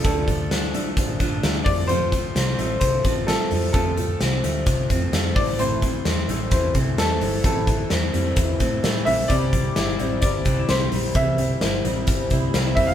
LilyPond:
<<
  \new Staff \with { instrumentName = "Upright piano" } { \time 4/4 \key a \phrygian \tempo 4 = 130 a'4 r2 r8 d''8 | c''2 c''4 a'4 | a'4 r2 r8 d''8 | c''2 c''4 a'4 |
a'4 r2 r8 e''8 | d''2 d''4 c''4 | e''4 r2 r8 e''16 f''16 | }
  \new Staff \with { instrumentName = "Steel-string acoustic guitar" } { \time 4/4 \key a \phrygian <d a d' f' a'>8 <a d' f' a'>4 <a d' f' a'>4 <a d' f' a'>8 <a d' f' a'>8 <a c' f' a'>8 | <f a c' f' a'>8 <a c' f' a'>4 <a c' f' a'>4 <a c' f' a'>8 <a c' f' a'>8 <a c' f' a'>8 | <f a c' f' a'>8 <a c' f' a'>4 <a c' f' a'>4 <a c' f' a'>8 <a c' f' a'>8 <a c' e' a'>8 | <a, e a c' e' a'>8 <a c' e' a'>4 <a c' e' a'>4 <a c' e' a'>8 <a c' e' a'>8 <a c' e' a'>8 |
<a, e a c' e' a'>8 <a c' e' a'>4 <a c' e' a'>4 <a c' e' a'>8 <a c' e' a'>8 <a c' e' a'>8 | <c e g c' e' c''>8 <g c' e' c''>4 <g c' e' c''>4 <g c' e' c''>8 <g c' e' c''>8 <g c' e' c''>8 | <c e g c' e' c''>8 <g c' e' c''>4 <g c' e' c''>4 <g c' e' c''>8 <g c' e' c''>8 <g c' e' c''>8 | }
  \new Staff \with { instrumentName = "Clean electric guitar" } { \time 4/4 \key a \phrygian <f a d'>8 f8 d'8 a8 f8 d'8 a8 f8 | f8 f8 c'8 a8 f8 c'8 a8 f8 | f8 f8 c'8 a8 f8 c'8 a8 e8 | e8 e8 c'8 a8 e8 c'8 a8 e8 |
e8 e8 c'8 g16 a16 e8 c'8 a8 e8 | g8 g8 e'8 c'8 g8 d'16 e'16 c'8 g8 | g8 g8 e'8 c'8 g8 e'8 c'8 g8 | }
  \new Staff \with { instrumentName = "Fingered electric bass" } { \clef bass \time 4/4 \key a \phrygian d,4. a,,8 a,,8 a,,8 d,8 f,8~ | f,4 c,8 a,,8 c,8 a,,8. r16 f,8 | f,4 c,8 d,8 c,8 f,8 f,8 a,,8~ | a,,4 e,8 a,,8 e,8 c,8 e,8 g,,8 |
a,,4 e,8 f,8 e,8 a,8 a,8 bes,,8 | c,4 g,,8 a,,8 g,,8 c,8 c,8 bes,,8 | c,4 g,,8 a,,8 g,,8 c,8 c,8 f,,8 | }
  \new DrumStaff \with { instrumentName = "Drums" } \drummode { \time 4/4 <hh bd>8 <hh bd>8 <hh sn>8 hh8 <hh bd>8 <hh bd>8 <hh sn>8 <hho bd>8 | hh8 <hh bd>8 <hh sn>8 hh8 <hh bd>8 <hh bd>8 <hh sn>8 hho8 | <hh bd>8 hh8 <hh sn>8 hh8 <hh bd>8 <hh bd>8 <hh sn>8 <hho bd>8 | hh8 <hh bd>8 <hh sn>8 hh8 <hh bd>8 <hh bd>8 <hh sn>8 hho8 |
<hh bd>8 <hh bd>8 <hh sn>8 hh8 <hh bd>8 <hh bd>8 <hh sn>8 hho8 | <hh bd>8 <hh bd>8 <hh sn>8 hh8 <hh bd>8 <hh bd>8 <hh sn>8 hho8 | <hh bd>8 hh8 <hh sn>8 hh8 <hh bd>8 <hh bd>8 <hh sn>8 <hho bd>8 | }
>>